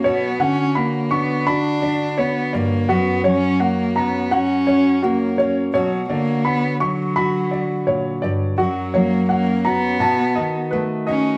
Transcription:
<<
  \new Staff \with { instrumentName = "Upright piano" } { \time 4/4 \key b \minor \tempo 4 = 84 cis''8 fis''8 b''8 cis'''8 b''8 d''8 cis''8 d''8 | fis'8 cis''8 fis''8 ais''8 fis''8 cis''8 fis'8 cis''8 | cis''8 d''8 b''8 cis'''8 b''8 d''8 cis''8 d''8 | fis'8 cis''8 fis''8 ais''8 a''8 dis''8 b'8 dis''8 | }
  \new Staff \with { instrumentName = "Steel-string acoustic guitar" } { \time 4/4 \key b \minor << { fis'4. d'8 fis'8 d'4. | fis'4. cis'8 fis'8 cis'8 ais8 cis'8 | fis'2 fis'2 | fis'4 cis'8 fis'8 fis'4 a8 dis'8 | } \\ { b,8 d2. g,8 | fis,8 fis2.~ fis8 | b,8 d2~ d8 ais,8 g,8 | fis,8 fis4. b,8 dis4. | } >> }
  \new Staff \with { instrumentName = "Cello" } { \time 4/4 \key b \minor b8 cis'8 ais8 b8 d'4 b8 ais8 | b8 cis'8 ais8 b8 cis'4 ais8. r16 | fis8 ais8 b8 fis2 r8 | fis8 ais8 ais8 b4. r8 cis'8 | }
>>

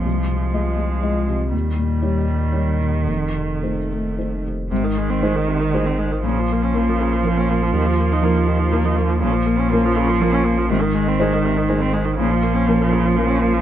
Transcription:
<<
  \new Staff \with { instrumentName = "Felt piano" } { \time 3/4 \key bes \dorian \tempo 4 = 121 c,8 c8 <aes f' ees''>8 aes8 <aes f' ees''>8 c8 | ees,8 bes,8 <g ees' des''>8 r8 <g ees' des''>8 bes,8 | f,8 c8 <a ees' c''>8 a8 <a ees' c''>8 c8 | aes,4 <aes ees' c''>4 <aes ees' c''>4 |
bes,4 <f des' bes'>4 <f des' bes'>4 | ees,4 <f ees' bes'>4 <f ees' bes'>4 | bes,4 <f des' bes'>4 <f des' bes'>4 | aes,4 <aes ees' c''>4 <aes ees' c''>4 |
bes,4 <f des' bes'>4 <f des' bes'>4 | }
  \new Staff \with { instrumentName = "Viola" } { \clef bass \time 3/4 \key bes \dorian aes2. | g2. | a2~ a8 r8 | c16 ees16 aes16 c'16 aes16 ees16 c16 ees16 aes16 c'16 aes16 ees16 |
des16 f16 bes16 des'16 bes16 f16 des16 f16 bes16 des'16 bes16 f16 | ees16 f16 bes16 ees'16 bes16 f16 ees16 f16 bes16 ees'16 bes16 f16 | des16 f16 bes16 des'16 bes16 f16 des16 f16 bes16 des'16 bes16 f16 | c16 ees16 aes16 c'16 aes16 ees16 c16 ees16 aes16 c'16 aes16 ees16 |
des16 f16 bes16 des'16 bes16 f16 des16 f16 bes16 des'16 bes16 f16 | }
  \new Staff \with { instrumentName = "Cello" } { \clef bass \time 3/4 \key bes \dorian f2. | ees2.~ | ees2~ ees8 r8 | ees2. |
f2.~ | f2. | f2. | ees2. |
f2. | }
  \new Staff \with { instrumentName = "Sub bass" } { \clef bass \time 3/4 \key bes \dorian c,2. | ees,2. | f,,2. | aes,,2. |
bes,,2. | ees,2. | bes,,2. | aes,,2. |
bes,,2. | }
>>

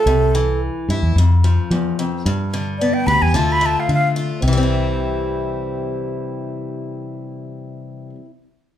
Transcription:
<<
  \new Staff \with { instrumentName = "Flute" } { \time 4/4 \key c \major \tempo 4 = 109 a'4 r2. | r4 d''16 g''16 b''16 aes''16 a''16 b''16 a''16 f''16 f''8 r8 | r1 | r1 | }
  \new Staff \with { instrumentName = "Steel-string acoustic guitar" } { \clef bass \time 4/4 \key c \major << { r4. e'8 r2 | r4 b8 g'8 <a d' f'>4 d'8 f'8 | <e g c' e'>1~ | <e g c' e'>1 | } \\ { c8 e4. f,8 f8 e,8 f,8 | g,8 d4. d8 a4. | c1~ | c1 | } >> }
  \new Staff \with { instrumentName = "Fingered electric bass" } { \clef bass \time 4/4 \key c \major c,4. g,16 e,16 f,4 f4 | g,4. d,16 e,16 d,4 d4 | c,1~ | c,1 | }
>>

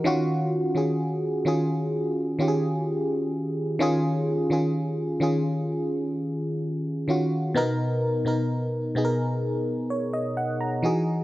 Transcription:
\new Staff \with { instrumentName = "FM electric piano" } { \time 4/4 \key ees \minor \tempo 4 = 64 << { r1 | r1 | r2 r8 des''16 dis''16 fis''16 ais''8 r16 | } \\ { <ees des' f' ges'>8. <ees des' f' aes'>8. <ees des' f' aes'>8. r16 <ees des' f' g' aes'>4~ <ees des' f' g' aes'>16 r16 | <ees des' f' aes'>8. <ees des' f' aes'>8. <ees des' f' aes'>4.~ <ees des' f' aes'>16 r16 <ees des' f' ges'>8 | <b, b dis' ais'>8. <b, b dis' ais'>8. <b, b dis' aes' ais'>8. r4 r16 <e dis' fis' gis'>8 | } >> }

